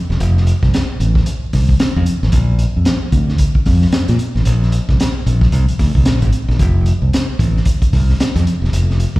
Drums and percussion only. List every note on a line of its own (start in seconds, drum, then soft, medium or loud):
0.11 snare soft
0.20 closed hi-hat medium
0.37 snare soft
0.47 closed hi-hat medium
0.63 kick loud
0.63 snare soft
0.74 snare medium
0.74 closed hi-hat medium
1.01 closed hi-hat medium
1.15 kick medium
1.15 snare soft
1.26 closed hi-hat medium
1.53 kick medium
1.53 snare soft
1.53 open hi-hat medium
1.69 kick medium
1.80 snare loud
1.80 closed hi-hat medium
2.06 closed hi-hat medium
2.23 snare soft
2.32 kick loud
2.32 closed hi-hat medium
2.59 closed hi-hat medium
2.85 snare loud
2.85 closed hi-hat medium
3.12 kick medium
3.12 closed hi-hat medium
3.29 snare soft
3.38 kick medium
3.38 closed hi-hat medium
3.55 kick medium
3.66 kick medium
3.66 snare soft
3.66 open hi-hat medium
3.82 snare soft
3.92 snare loud
3.92 closed hi-hat medium
4.08 snare soft
4.08 closed hi-hat medium
4.19 closed hi-hat medium
4.36 snare soft
4.45 closed hi-hat medium
4.63 snare soft
4.72 closed hi-hat medium
4.89 kick loud
4.89 snare soft
5.00 snare medium
5.00 closed hi-hat medium
5.27 closed hi-hat medium
5.41 kick medium
5.41 snare soft
5.52 closed hi-hat medium
5.68 closed hi-hat medium
5.79 kick medium
5.79 snare soft
5.79 open hi-hat medium
5.95 kick medium
6.05 snare loud
6.05 closed hi-hat medium
6.22 closed hi-hat medium
6.32 closed hi-hat medium
6.50 snare soft
6.59 kick medium
6.59 closed hi-hat medium
6.86 closed hi-hat medium
7.13 snare medium
7.13 closed hi-hat medium
7.39 kick medium
7.39 closed hi-hat medium
7.57 snare soft
7.65 kick medium
7.65 closed hi-hat medium
7.82 kick loud
7.82 closed hi-hat medium
7.93 kick medium
7.93 snare soft
7.93 open hi-hat medium
8.09 snare soft
8.20 snare loud
8.20 closed hi-hat medium
8.36 snare soft
8.36 closed hi-hat medium
8.47 closed hi-hat medium
8.64 snare soft
8.73 closed hi-hat medium
8.90 snare soft
9.00 closed hi-hat medium
9.16 kick loud